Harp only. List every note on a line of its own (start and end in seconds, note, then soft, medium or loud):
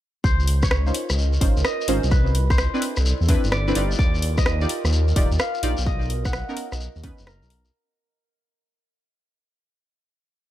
0.24 0.69 C5 medium
0.63 2.56 C#5 medium
1.65 3.43 D#5 medium
2.11 2.56 B4 medium
2.50 4.48 C5 medium
3.52 3.98 D5 medium
3.99 4.43 D5 medium
4.37 5.86 D#5 medium
5.39 6.31 F5 medium
5.86 7.65 D#5 medium
6.25 7.86 F#5 medium
7.27 9.39 A#4 medium